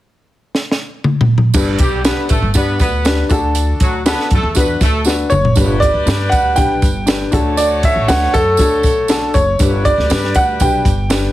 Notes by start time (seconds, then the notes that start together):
0.55 snare
0.71 snare
1.04 mid tom
1.21 floor tom
1.38 floor tom
1.54 G1 D4 G4 B4, kick, crash, tambourine
1.79 B1 G3 G4, kick, closed hi-hat, tambourine
2.04 B3 D4 G4 B4, snare, closed hi-hat, tambourine
2.29 A1 A3 A4, kick, closed hi-hat, tambourine
2.42 G1
2.54 G2 B3 D4 G4 B4 D5, kick, closed hi-hat, tambourine
2.79 D2 B3 B4, kick, closed hi-hat, tambourine
3.05 D4 G4 B4, snare, closed hi-hat, tambourine
3.29 D2 D4 F#4 A4, kick, closed hi-hat, tambourine
3.55 closed hi-hat, tambourine
3.80 D2 F#3 F#4, kick, closed hi-hat, tambourine
4.05 B3 D4 F#4 A4 B4, snare, closed hi-hat, tambourine
4.20 snare
4.30 F#2 A3 A4, kick, closed hi-hat, tambourine
4.43 E2
4.55 B3 D4 F#4 B4, kick, closed hi-hat, tambourine
4.81 D2 A3 A4, kick, closed hi-hat, tambourine
5.05 D4 F#4 B4, snare, tambourine
5.30 F#1 C#5, mid tom, tambourine
5.45 floor tom
5.55 G1 G3 D4 G4 B4, kick, closed hi-hat, tambourine
5.80 D5, kick, closed hi-hat, tambourine
5.94 D2
6.06 G2 D4 G4 B4, snare, closed hi-hat, tambourine
6.29 D2 F#5, kick, closed hi-hat, tambourine
6.56 B1 D4 G4 B4 G5, kick, closed hi-hat, tambourine
6.82 G1, kick, closed hi-hat, tambourine
7.06 D4 G4 B4, snare, closed hi-hat, tambourine
7.31 D2 A3 D4 F#4 A4 C#5, kick, closed hi-hat, tambourine
7.57 D5, closed hi-hat, tambourine
7.83 E5, kick, closed hi-hat, tambourine
7.96 A1
8.08 D2 D4 F#4 B4 F#5, snare, closed hi-hat, tambourine
8.23 snare
8.34 F#2 A4, kick, closed hi-hat, tambourine
8.57 D2 D4 F#4 A4, kick, closed hi-hat, tambourine
8.83 B1, kick, closed hi-hat, tambourine
9.08 D4 F#4 A4, snare, closed hi-hat, tambourine
9.34 F#1 C#5, kick, closed hi-hat, tambourine
9.59 G1 G3 D4 G4 B4, kick, closed hi-hat, tambourine
9.85 D5, kick, closed hi-hat, tambourine
9.98 D2, snare
10.10 G2 D4 G4 B4, snare, closed hi-hat, tambourine
10.24 snare
10.35 D2 F#5, kick, closed hi-hat, tambourine
10.60 B1 D4 G4 B4 G5, kick, closed hi-hat, tambourine
10.85 G1, kick, closed hi-hat, tambourine
11.10 D4 G4 B4, snare, closed hi-hat, tambourine